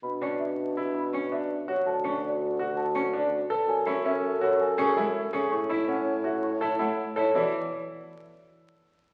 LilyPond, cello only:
\new Staff \with { instrumentName = "Cello" } { \time 5/4 \key b \dorian \tempo 4 = 164 r8 cis'8 r2 cis'8 r4. | r8 cis'8 r2 cis'8 r4. | r8 cis'8 r2 cis'8 gis8 r8 cis'8 | r8 e'8 r2 e'8 a8 r8 e'8 |
e8 r1 r8 | }